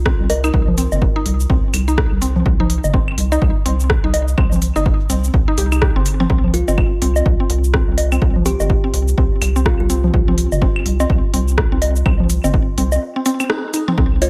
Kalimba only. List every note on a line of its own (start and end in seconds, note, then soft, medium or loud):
0.30 0.39 A#4 medium
0.44 0.50 A#4 medium
6.54 6.74 F4 medium
8.46 8.55 G4 medium
8.60 8.66 G4 medium
9.66 9.75 F4 medium
9.80 9.86 F4 medium
14.22 14.30 F4 medium